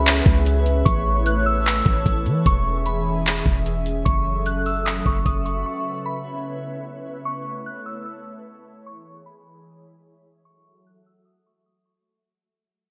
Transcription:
0.00 0.22 C#2 loud
0.00 2.43 B3 medium
0.00 0.84 C#4 medium
0.00 0.84 E4 medium
0.00 0.84 G#4 medium
0.00 2.43 B4 medium
0.00 4.02 C#5 medium
0.00 0.84 E5 medium
0.06 clap loud
0.06 closed hi-hat medium
0.26 0.83 C#2 loud
0.26 kick loud
0.46 closed hi-hat medium
0.66 closed hi-hat medium
0.85 1.82 A1 loud
0.85 2.44 A3 medium
0.85 2.44 E4 medium
0.85 2.44 A4 medium
0.85 2.44 C#5 medium
0.85 1.23 C#6 loud
0.85 kick loud
0.85 closed hi-hat medium
1.26 1.45 F#6 medium
1.26 closed hi-hat medium
1.46 1.65 E6 medium
1.66 2.42 E6 medium
1.66 clap loud
1.66 closed hi-hat medium
1.86 2.05 A1 loud
1.86 kick loud
2.06 2.27 A1 loud
2.06 kick medium
2.06 closed hi-hat medium
2.26 2.45 E3 loud
2.26 closed hi-hat medium
2.46 3.42 E1 loud
2.46 4.04 E3 medium
2.46 4.04 G#3 medium
2.46 7.22 C#4 medium
2.46 4.04 E4 medium
2.46 4.04 G#4 medium
2.46 7.22 E5 medium
2.46 2.84 C#6 loud
2.46 kick loud
2.46 closed hi-hat medium
2.86 3.24 B5 medium
2.86 closed hi-hat medium
3.26 clap loud
3.26 closed hi-hat medium
3.46 4.03 E1 loud
3.46 kick loud
3.66 closed hi-hat medium
3.86 closed hi-hat medium
4.05 5.02 F#1 loud
4.05 5.64 F#3 medium
4.05 5.65 A3 medium
4.05 5.65 F#4 medium
4.05 5.64 A4 medium
4.05 5.64 E5 medium
4.05 4.43 C#6 loud
4.05 kick loud
4.05 closed hi-hat medium
4.46 4.65 F#6 medium
4.46 closed hi-hat medium
4.66 4.85 E6 medium
4.66 open hi-hat soft
4.85 5.05 D#6 medium
4.85 clap loud
4.85 closed hi-hat medium
5.06 5.25 F#1 loud
5.06 5.25 C#6 medium
5.06 kick loud
5.26 5.64 F#1 loud
5.26 5.45 D#6 medium
5.26 kick medium
5.26 closed hi-hat medium
5.46 5.65 C#6 medium
5.46 closed hi-hat medium
5.66 7.24 C#3 medium
5.66 8.83 B3 medium
5.66 7.24 E4 medium
5.66 8.83 B4 medium
5.66 7.24 C#5 medium
5.66 6.04 C#6 medium
6.06 6.43 B5 medium
7.25 8.84 A3 medium
7.25 10.43 E4 medium
7.25 8.84 A4 medium
7.25 10.43 C#5 medium
7.25 7.63 C#6 loud
7.66 7.85 F#6 medium
7.86 8.05 E6 medium
8.06 8.82 E6 medium
8.86 10.44 E3 medium
8.86 10.44 G#3 medium
8.86 10.44 E4 medium
8.86 10.44 G#4 medium
8.86 9.24 C#6 loud
9.26 9.63 B5 medium
10.45 12.04 F#3 medium
10.45 12.04 A3 medium
10.45 12.04 F#4 medium
10.45 12.04 A4 medium
10.45 12.04 E5 medium
10.45 10.83 C#6 loud
10.87 11.05 F#6 medium
11.06 11.25 E6 medium
11.25 11.45 D#6 medium
11.46 11.65 C#6 medium
11.66 11.85 D#6 medium
11.86 12.05 C#6 medium

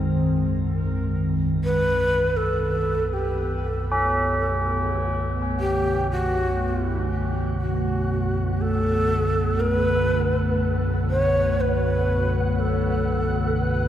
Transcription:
0.00 1.58 B1 medium
0.00 1.59 F#2 medium
0.00 1.60 D#3 medium
0.00 1.60 G#3 medium
0.00 1.61 C4 medium
0.00 1.62 F#5 medium
1.59 13.88 B1 medium
1.59 13.88 F#2 medium
1.59 13.88 B2 medium
1.59 13.88 F#5 medium
1.64 2.38 B4 loud
1.97 13.88 A3 medium
2.37 3.15 A4 medium
2.61 13.88 F#5 medium
2.74 13.88 D3 medium
3.13 3.61 G4 medium
3.61 5.07 A4 medium
3.92 9.91 C#4 medium
5.60 6.07 G4 loud
6.11 7.07 F#4 loud
7.60 8.63 F#4 medium
8.61 9.62 A4 loud
9.60 10.60 B4 loud
11.10 11.62 C#5 loud
11.60 12.61 B4 medium
12.59 13.62 A4 medium
13.60 13.88 B4 loud

